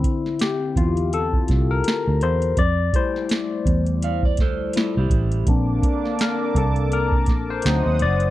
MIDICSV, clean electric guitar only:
0, 0, Header, 1, 2, 480
1, 0, Start_track
1, 0, Tempo, 722892
1, 1708, Time_signature, 4, 2, 24, 8
1, 5513, End_track
2, 0, Start_track
2, 0, Title_t, "Clean electric guitar"
2, 0, Program_c, 0, 27
2, 2683, Note_on_c, 0, 77, 69
2, 2688, Note_on_c, 0, 74, 59
2, 2807, Note_off_c, 0, 77, 0
2, 2810, Note_off_c, 0, 74, 0
2, 2824, Note_on_c, 0, 74, 79
2, 2912, Note_off_c, 0, 74, 0
2, 2928, Note_on_c, 0, 72, 75
2, 2932, Note_on_c, 0, 69, 68
2, 3146, Note_off_c, 0, 72, 0
2, 3149, Note_off_c, 0, 69, 0
2, 3169, Note_on_c, 0, 65, 68
2, 3172, Note_on_c, 0, 69, 67
2, 3291, Note_off_c, 0, 65, 0
2, 3291, Note_off_c, 0, 69, 0
2, 3304, Note_on_c, 0, 67, 77
2, 3310, Note_on_c, 0, 64, 62
2, 3621, Note_off_c, 0, 67, 0
2, 3623, Note_off_c, 0, 64, 0
2, 5513, End_track
0, 0, End_of_file